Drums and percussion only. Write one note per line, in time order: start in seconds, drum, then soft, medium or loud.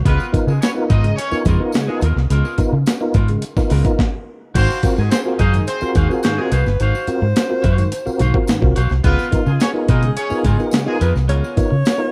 0.05 kick loud
0.05 closed hi-hat medium
0.20 tambourine medium
0.34 kick medium
0.34 closed hi-hat medium
0.34 tambourine medium
0.48 tambourine soft
0.62 snare loud
0.62 closed hi-hat medium
0.62 tambourine loud
0.90 kick medium
0.90 closed hi-hat medium
1.04 closed hi-hat soft
1.18 closed hi-hat loud
1.18 tambourine soft
1.32 tambourine medium
1.45 kick medium
1.45 closed hi-hat medium
1.45 tambourine medium
1.72 snare loud
1.72 closed hi-hat medium
1.72 tambourine medium
2.01 closed hi-hat medium
2.01 tambourine soft
2.17 snare soft
2.30 closed hi-hat medium
2.45 tambourine medium
2.58 kick medium
2.58 closed hi-hat medium
2.58 tambourine medium
2.86 snare loud
2.86 closed hi-hat medium
2.86 tambourine loud
3.14 kick loud
3.14 closed hi-hat medium
3.28 closed hi-hat soft
3.42 closed hi-hat loud
3.42 tambourine medium
3.57 kick medium
3.57 snare soft
3.57 tambourine medium
3.70 open hi-hat medium
3.70 tambourine medium
3.85 kick loud
3.85 closed hi-hat medium
3.85 tambourine soft
3.99 kick medium
3.99 snare medium
4.55 kick loud
4.55 closed hi-hat medium
4.55 crash loud
4.71 tambourine medium
4.83 kick medium
4.83 closed hi-hat medium
4.83 tambourine medium
4.98 tambourine soft
5.11 snare loud
5.11 closed hi-hat loud
5.11 tambourine loud
5.39 kick medium
5.39 closed hi-hat medium
5.53 closed hi-hat soft
5.53 tambourine soft
5.67 closed hi-hat loud
5.67 tambourine medium
5.81 tambourine medium
5.95 kick medium
5.95 closed hi-hat medium
5.95 tambourine medium
6.11 tambourine soft
6.23 snare loud
6.23 closed hi-hat medium
6.23 tambourine loud
6.52 closed hi-hat medium
6.52 tambourine medium
6.66 snare soft
6.66 tambourine soft
6.80 closed hi-hat medium
6.95 tambourine medium
7.07 closed hi-hat medium
7.07 tambourine medium
7.36 snare loud
7.36 closed hi-hat loud
7.36 tambourine loud
7.64 kick loud
7.64 closed hi-hat medium
7.78 closed hi-hat soft
7.78 tambourine soft
7.92 closed hi-hat loud
7.92 tambourine medium
8.07 tambourine medium
8.19 closed hi-hat medium
8.19 tambourine medium
8.34 kick medium
8.47 snare loud
8.47 closed hi-hat medium
8.47 tambourine loud
8.62 kick medium
8.76 closed hi-hat medium
8.76 tambourine medium
8.89 snare soft
8.89 tambourine soft
9.04 kick loud
9.04 closed hi-hat medium
9.19 tambourine medium
9.32 kick medium
9.32 closed hi-hat medium
9.32 tambourine medium
9.46 tambourine soft
9.60 snare loud
9.60 closed hi-hat medium
9.60 tambourine loud
9.88 kick medium
9.88 closed hi-hat medium
10.03 closed hi-hat medium
10.17 closed hi-hat loud
10.17 tambourine medium
10.30 tambourine medium
10.44 kick medium
10.44 closed hi-hat medium
10.44 tambourine medium
10.60 tambourine soft
10.71 snare loud
10.71 closed hi-hat medium
10.71 tambourine loud
11.01 closed hi-hat medium
11.01 tambourine medium
11.15 snare soft
11.15 tambourine soft
11.29 closed hi-hat medium
11.44 tambourine medium
11.57 kick medium
11.57 closed hi-hat medium
11.57 tambourine medium
11.85 snare loud
11.85 closed hi-hat medium
11.85 tambourine loud